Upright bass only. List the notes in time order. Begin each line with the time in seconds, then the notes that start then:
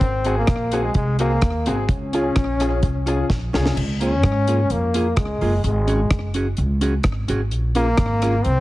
0.01 G#1
0.48 A#1
0.95 C2
1.42 D#2
1.67 G#1
1.89 C#2
2.36 A#1
2.83 C2
3.30 A#1
3.55 C2
3.76 C#2
4.24 G#2
4.70 F2
5.17 C#2
5.41 F#1
5.64 G#1
6.11 F#1
6.58 C#2
7.05 G#1
7.29 G#1
7.52 A#1
7.99 G#1
8.45 C2